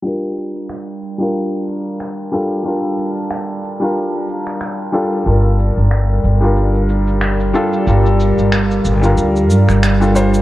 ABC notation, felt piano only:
X:1
M:4/4
L:1/16
Q:"Swing 16ths" 1/4=92
K:Gm
V:1 name="Felt piano"
[G,DFB]6- [G,DFB] [G,DFB]6- [G,DFB] [G,DFA]2 | [G,DFB]6- [G,DFB] [G,DFB]6- [G,DFB] [G,DFA]2 | [G,DFB]6- [G,DFB] [G,DFB]6- [G,DFB] [G,DFA]2 | [G,DFB]6- [G,DFB] [G,DFB]6 [G,DFA] [G,DFc]2 |]